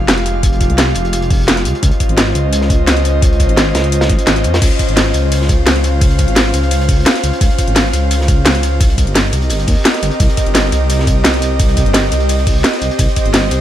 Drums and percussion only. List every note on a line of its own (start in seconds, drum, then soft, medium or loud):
0.08 snare loud
0.08 closed hi-hat medium
0.17 closed hi-hat soft
0.26 closed hi-hat medium
0.43 kick loud
0.43 closed hi-hat medium
0.53 closed hi-hat soft
0.61 kick medium
0.61 closed hi-hat medium
0.70 closed hi-hat soft
0.78 snare loud
0.78 closed hi-hat medium
0.95 closed hi-hat medium
1.05 closed hi-hat soft
1.13 closed hi-hat medium
1.22 closed hi-hat soft
1.30 kick loud
1.30 closed hi-hat medium
1.30 open hi-hat medium
1.48 snare loud
1.48 closed hi-hat medium
1.57 snare soft
1.57 closed hi-hat soft
1.65 closed hi-hat medium
1.75 closed hi-hat soft
1.83 kick loud
1.83 closed hi-hat medium
1.83 closed hi-hat loud
1.91 closed hi-hat soft
2.00 kick medium
2.00 closed hi-hat medium
2.09 closed hi-hat soft
2.18 snare loud
2.18 closed hi-hat medium
2.35 closed hi-hat medium
2.53 closed hi-hat medium
2.61 snare soft
2.70 kick loud
2.70 closed hi-hat medium
2.87 snare loud
2.87 closed hi-hat medium
2.97 closed hi-hat soft
3.05 closed hi-hat medium
3.22 kick loud
3.22 closed hi-hat medium
3.22 closed hi-hat loud
3.33 closed hi-hat soft
3.40 kick medium
3.40 closed hi-hat medium
3.49 closed hi-hat soft
3.57 snare loud
3.57 closed hi-hat loud
3.57 closed hi-hat medium
3.75 snare loud
3.75 closed hi-hat medium
3.84 closed hi-hat soft
3.92 closed hi-hat medium
4.01 snare loud
4.01 closed hi-hat medium
4.10 kick loud
4.10 closed hi-hat medium
4.19 closed hi-hat soft
4.19 closed hi-hat medium
4.27 snare loud
4.27 closed hi-hat medium
4.27 closed hi-hat loud
4.36 closed hi-hat soft
4.44 closed hi-hat medium
4.54 snare loud
4.54 closed hi-hat medium
4.62 kick loud
4.62 closed hi-hat loud
4.62 crash medium
4.62 ride medium
4.71 closed hi-hat soft
4.79 kick medium
4.79 closed hi-hat medium
4.79 ride medium
4.89 closed hi-hat soft
4.97 snare loud
4.97 closed hi-hat loud
4.97 closed hi-hat medium
4.97 ride medium
5.14 closed hi-hat medium
5.14 ride medium
5.32 closed hi-hat loud
5.32 closed hi-hat medium
5.32 ride medium
5.42 snare soft
5.49 kick loud
5.49 closed hi-hat medium
5.49 ride medium
5.67 snare loud
5.67 closed hi-hat loud
5.67 closed hi-hat medium
5.67 ride medium
5.76 closed hi-hat soft
5.84 closed hi-hat medium
5.84 ride medium
6.01 kick loud
6.01 closed hi-hat medium
6.01 closed hi-hat loud
6.01 ride medium
6.10 closed hi-hat soft
6.19 kick medium
6.19 closed hi-hat medium
6.19 ride medium
6.28 closed hi-hat soft
6.36 snare loud
6.36 closed hi-hat loud
6.36 closed hi-hat medium
6.36 ride medium
6.54 closed hi-hat medium
6.54 ride medium
6.63 closed hi-hat soft
6.71 closed hi-hat medium
6.71 closed hi-hat loud
6.71 ride medium
6.81 closed hi-hat soft
6.89 kick loud
6.89 closed hi-hat medium
6.89 open hi-hat medium
6.89 ride medium
7.06 snare loud
7.06 closed hi-hat loud
7.06 closed hi-hat medium
7.06 ride medium
7.15 snare soft
7.15 closed hi-hat soft
7.24 closed hi-hat medium
7.24 ride medium
7.33 closed hi-hat soft
7.41 kick loud
7.41 closed hi-hat loud
7.41 closed hi-hat medium
7.41 ride medium
7.50 closed hi-hat soft
7.58 kick medium
7.58 closed hi-hat medium
7.58 ride medium
7.67 closed hi-hat soft
7.76 snare loud
7.76 closed hi-hat loud
7.76 closed hi-hat medium
7.76 ride medium
7.93 closed hi-hat medium
7.93 ride medium
8.11 closed hi-hat medium
8.11 ride medium
8.21 snare soft
8.28 kick loud
8.28 closed hi-hat medium
8.28 ride medium
8.45 snare loud
8.45 closed hi-hat medium
8.45 closed hi-hat loud
8.45 ride medium
8.55 closed hi-hat soft
8.63 closed hi-hat medium
8.63 ride medium
8.81 kick loud
8.81 closed hi-hat medium
8.81 ride medium
8.90 closed hi-hat soft
8.98 kick medium
8.98 closed hi-hat medium
8.98 ride medium
9.07 closed hi-hat soft
9.15 snare loud
9.15 closed hi-hat loud
9.15 closed hi-hat medium
9.15 ride medium
9.32 closed hi-hat medium
9.32 ride medium
9.42 closed hi-hat soft
9.50 closed hi-hat medium
9.50 ride medium
9.59 closed hi-hat soft
9.68 kick loud
9.68 closed hi-hat medium
9.68 open hi-hat medium
9.68 ride medium
9.85 snare loud
9.85 closed hi-hat medium
9.85 ride medium
9.94 snare soft
9.94 closed hi-hat soft
10.03 closed hi-hat medium
10.03 ride soft
10.11 closed hi-hat soft
10.20 kick loud
10.20 closed hi-hat medium
10.20 ride medium
10.30 closed hi-hat soft
10.37 kick medium
10.37 closed hi-hat medium
10.37 ride medium
10.46 closed hi-hat soft
10.55 snare loud
10.55 closed hi-hat medium
10.55 ride medium
10.72 closed hi-hat medium
10.72 ride medium
10.90 closed hi-hat medium
10.90 ride medium
10.99 snare soft
11.07 kick loud
11.07 closed hi-hat medium
11.07 ride medium
11.24 snare loud
11.24 closed hi-hat medium
11.24 ride medium
11.34 closed hi-hat soft
11.42 closed hi-hat medium
11.42 ride medium
11.59 kick loud
11.59 closed hi-hat medium
11.59 ride medium
11.68 closed hi-hat soft
11.77 kick medium
11.77 closed hi-hat medium
11.77 ride medium
11.86 closed hi-hat soft
11.94 snare loud
11.94 closed hi-hat medium
11.94 ride medium
12.12 closed hi-hat medium
12.12 ride medium
12.20 closed hi-hat soft
12.29 closed hi-hat medium
12.29 ride medium
12.39 closed hi-hat soft
12.47 kick loud
12.47 closed hi-hat medium
12.47 open hi-hat medium
12.47 ride medium
12.64 snare loud
12.64 closed hi-hat medium
12.64 ride medium
12.73 snare soft
12.73 closed hi-hat soft
12.82 closed hi-hat medium
12.82 ride medium
12.91 closed hi-hat soft
12.99 kick loud
12.99 closed hi-hat loud
12.99 closed hi-hat medium
12.99 ride medium
13.09 closed hi-hat soft
13.16 kick medium
13.16 closed hi-hat medium
13.16 ride medium
13.26 closed hi-hat soft
13.34 snare loud
13.34 closed hi-hat medium
13.34 ride medium
13.51 closed hi-hat medium
13.51 ride medium